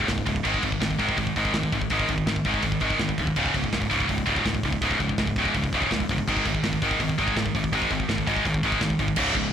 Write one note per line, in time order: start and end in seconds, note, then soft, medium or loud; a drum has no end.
0.08 0.21 C#1 medium
0.08 0.25 C#2 medium
0.08 0.25 G#2 medium
0.08 kick medium
0.08 snare loud
0.08 open hi-hat medium
0.18 kick medium
0.26 0.39 C#1 medium
0.26 0.43 C#2 medium
0.26 0.43 G#2 medium
0.26 kick medium
0.26 open hi-hat medium
0.36 kick medium
0.44 0.58 G#1 medium
0.44 0.62 G#2 medium
0.44 0.62 D#3 medium
0.44 0.63 G#3 loud
0.44 kick medium
0.44 crash medium
0.54 kick medium
0.63 0.76 G#1 medium
0.63 0.79 G#2 medium
0.63 0.79 D#3 medium
0.63 kick medium
0.63 open hi-hat medium
0.72 kick medium
0.80 0.94 G#1 medium
0.80 0.97 G#2 medium
0.80 0.97 D#3 medium
0.80 kick medium
0.80 snare loud
0.80 open hi-hat medium
0.91 kick medium
0.98 1.12 G#1 medium
0.98 1.16 G#2 medium
0.98 1.16 D#3 loud
0.98 1.17 G#3 loud
0.98 kick medium
0.98 open hi-hat medium
1.09 kick medium
1.17 1.30 G#1 medium
1.17 1.34 G#2 medium
1.17 1.34 D#3 medium
1.17 kick medium
1.17 open hi-hat medium
1.27 kick medium
1.36 1.49 G#1 medium
1.36 1.53 G#2 medium
1.36 1.54 D#3 medium
1.36 1.54 G#3 loud
1.36 kick medium
1.36 open hi-hat medium
1.45 kick medium
1.53 1.66 G#1 medium
1.53 1.71 G#2 medium
1.53 1.71 D#3 medium
1.53 kick medium
1.53 snare loud
1.53 open hi-hat medium
1.63 kick medium
1.72 1.85 G#1 medium
1.72 1.89 G#2 medium
1.72 1.89 D#3 medium
1.72 kick medium
1.72 open hi-hat medium
1.82 kick medium
1.90 2.03 G#1 medium
1.90 2.07 G#2 medium
1.90 2.08 D#3 loud
1.90 2.08 G#3 medium
1.90 kick medium
1.90 open hi-hat medium
2.00 kick medium
2.08 2.22 G#1 medium
2.08 2.25 G#2 medium
2.08 2.25 D#3 medium
2.08 kick medium
2.08 open hi-hat medium
2.18 kick medium
2.26 2.39 G#1 medium
2.26 2.44 G#2 medium
2.26 2.44 D#3 medium
2.26 kick medium
2.26 snare loud
2.26 open hi-hat medium
2.36 kick medium
2.45 2.58 G#1 medium
2.45 2.62 G#2 medium
2.45 2.62 D#3 medium
2.45 2.64 G#3 loud
2.45 kick medium
2.45 open hi-hat medium
2.54 kick medium
2.62 2.76 G#1 medium
2.62 2.79 G#2 medium
2.62 2.80 D#3 medium
2.62 kick medium
2.62 open hi-hat medium
2.72 kick medium
2.80 2.94 G#1 medium
2.80 2.98 G#2 medium
2.80 2.99 D#3 medium
2.80 2.99 G#3 medium
2.80 kick medium
2.80 open hi-hat medium
2.90 kick medium
2.99 3.12 G#1 medium
2.99 3.17 G#2 medium
2.99 3.17 D#3 medium
2.99 kick medium
2.99 snare loud
2.99 open hi-hat medium
3.09 kick medium
3.18 3.31 D1 medium
3.18 3.35 G#2 medium
3.18 3.35 D#3 medium
3.18 kick medium
3.18 open hi-hat medium
3.27 kick medium
3.36 3.49 C#1 medium
3.36 3.53 C#2 medium
3.36 3.53 G#2 medium
3.36 3.54 C#3 loud
3.36 kick medium
3.36 crash medium
3.46 kick medium
3.54 3.67 C#1 medium
3.54 3.71 C#2 medium
3.54 3.72 G#2 medium
3.54 kick medium
3.54 open hi-hat medium
3.64 kick medium
3.73 3.85 C#1 medium
3.73 3.88 C#2 medium
3.73 3.89 G#2 medium
3.73 kick medium
3.73 snare loud
3.73 open hi-hat medium
3.82 kick medium
3.90 4.04 C#1 medium
3.90 4.06 C#2 medium
3.90 4.07 G#2 medium
3.90 4.08 C#3 medium
3.90 kick medium
3.90 open hi-hat medium
4.00 kick medium
4.08 4.22 C#1 medium
4.08 4.24 C#2 medium
4.08 4.25 G#2 medium
4.08 kick medium
4.08 open hi-hat medium
4.18 kick medium
4.26 4.40 C#1 medium
4.26 4.43 C#2 medium
4.26 4.44 G#2 medium
4.26 4.44 C#3 medium
4.26 kick medium
4.26 open hi-hat medium
4.36 kick medium
4.45 4.58 C#1 medium
4.45 4.61 C#2 medium
4.45 4.61 G#2 medium
4.45 kick medium
4.45 snare loud
4.45 open hi-hat medium
4.55 kick medium
4.63 4.76 C#1 medium
4.63 4.81 C#2 medium
4.63 4.81 G#2 medium
4.63 kick medium
4.63 open hi-hat medium
4.73 kick medium
4.81 4.94 C#1 medium
4.81 4.99 C#2 medium
4.81 4.99 G#2 medium
4.81 5.00 C#3 medium
4.81 kick medium
4.81 open hi-hat medium
4.91 kick medium
4.99 5.12 C#1 medium
4.99 5.16 C#2 medium
4.99 5.17 G#2 medium
4.99 kick medium
4.99 open hi-hat medium
5.09 kick medium
5.18 5.31 C#1 medium
5.18 5.35 C#2 medium
5.18 5.35 G#2 medium
5.18 kick medium
5.18 snare loud
5.18 open hi-hat medium
5.27 kick medium
5.36 5.48 C#1 medium
5.36 5.54 C#2 medium
5.36 5.55 G#2 loud
5.36 5.55 C#3 loud
5.36 kick medium
5.36 open hi-hat medium
5.45 kick medium
5.54 5.67 C#1 medium
5.54 5.71 C#2 medium
5.54 5.71 G#2 medium
5.54 kick medium
5.54 open hi-hat medium
5.64 kick medium
5.73 5.85 C#1 medium
5.73 5.90 C#2 medium
5.73 5.90 G#2 medium
5.73 5.91 C#3 loud
5.73 kick medium
5.73 open hi-hat medium
5.82 kick medium
5.91 6.04 C#1 medium
5.91 6.07 C#2 medium
5.91 6.08 G#2 medium
5.91 kick medium
5.91 snare loud
5.91 open hi-hat medium
6.00 kick medium
6.09 6.22 G1 medium
6.09 6.26 C#2 medium
6.09 6.26 G#2 medium
6.09 kick medium
6.09 open hi-hat medium
6.18 kick medium
6.28 6.40 G#1 medium
6.28 6.44 G#2 medium
6.28 6.45 D#3 medium
6.28 6.45 G#3 medium
6.28 kick medium
6.28 crash medium
6.37 kick medium
6.46 6.58 G#1 medium
6.46 6.62 G#2 medium
6.46 6.63 D#3 medium
6.46 kick medium
6.46 open hi-hat medium
6.55 kick medium
6.63 6.76 G#1 medium
6.63 6.80 G#2 medium
6.63 6.80 D#3 medium
6.63 kick medium
6.63 snare loud
6.63 open hi-hat medium
6.73 kick medium
6.82 6.94 G#1 medium
6.82 6.99 G#2 medium
6.82 6.99 D#3 loud
6.82 6.99 G#3 loud
6.82 kick medium
6.82 open hi-hat medium
6.91 kick medium
7.00 7.12 G#1 medium
7.00 7.16 G#2 medium
7.00 7.16 D#3 medium
7.00 kick medium
7.00 open hi-hat medium
7.09 kick medium
7.18 7.31 G#1 medium
7.18 7.35 G#2 medium
7.18 7.35 D#3 medium
7.18 7.36 G#3 loud
7.18 kick medium
7.18 open hi-hat medium
7.28 kick medium
7.36 7.49 G#1 medium
7.36 7.52 G#2 medium
7.36 7.53 D#3 medium
7.36 kick medium
7.36 snare loud
7.36 open hi-hat medium
7.46 kick medium
7.54 7.67 G#1 medium
7.54 7.71 G#2 medium
7.54 7.71 D#3 medium
7.54 kick medium
7.54 open hi-hat medium
7.64 kick medium
7.72 7.85 G#1 medium
7.72 7.90 G#2 medium
7.72 7.90 D#3 medium
7.72 7.91 G#3 loud
7.72 kick medium
7.72 open hi-hat medium
7.82 kick medium
7.91 8.03 G#1 medium
7.91 8.08 G#2 medium
7.91 8.08 D#3 medium
7.91 kick medium
7.91 open hi-hat medium
8.00 kick medium
8.09 8.21 G#1 medium
8.09 8.25 G#2 medium
8.09 8.26 D#3 medium
8.09 kick medium
8.09 snare loud
8.09 open hi-hat medium
8.18 kick medium
8.27 8.40 G#1 medium
8.27 8.44 G#2 medium
8.27 8.44 D#3 medium
8.27 8.44 G#3 loud
8.27 kick medium
8.27 open hi-hat medium
8.36 kick medium
8.45 8.58 G#1 medium
8.45 8.62 G#2 medium
8.45 8.62 D#3 medium
8.45 kick medium
8.45 open hi-hat medium
8.54 kick medium
8.63 8.76 G#1 medium
8.63 8.79 G#2 medium
8.63 8.80 D#3 medium
8.63 8.81 G#3 loud
8.63 kick medium
8.63 open hi-hat medium
8.72 kick medium
8.80 8.94 G#1 medium
8.80 8.97 G#2 medium
8.80 8.97 D#3 medium
8.80 kick medium
8.80 snare loud
8.80 open hi-hat medium
8.90 kick medium
8.99 9.12 G#1 medium
8.99 9.16 G#2 medium
8.99 9.16 D#3 medium
8.99 kick medium
8.99 open hi-hat medium
9.08 kick medium
9.16 9.34 C#1 loud
9.16 9.34 C#2 loud
9.16 9.34 G#2 loud
9.16 9.36 C#3 loud
9.16 kick loud
9.16 crash loud
9.16 crash medium
9.34 9.50 C#1 medium
9.34 9.50 C#2 medium
9.34 9.50 G#2 medium
9.34 kick medium